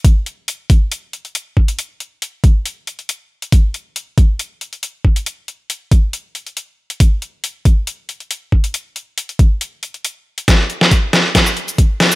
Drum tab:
HH |x-x-x-x-x-xxx--x|x-x-x-x-x-xxx--x|x-x-x-x-x-xxx--x|x-x-x-x-x-xxx--x|
SH |----------------|----------------|----------------|----------------|
SD |----------------|----------------|----------------|----------------|
BD |o-----o-------o-|------o---------|o-----o-------o-|------o---------|

HH |x-x-x-x-x-xxx--x|x-x-xxx-x-xxx--x|x-x-x-x-x-xxx-ox|
SH |----------------|----------------|---------x-x---x|
SD |----------------|----------------|o--o--o-o-----o-|
BD |o-----o-------o-|------o---------|o---o---o---o---|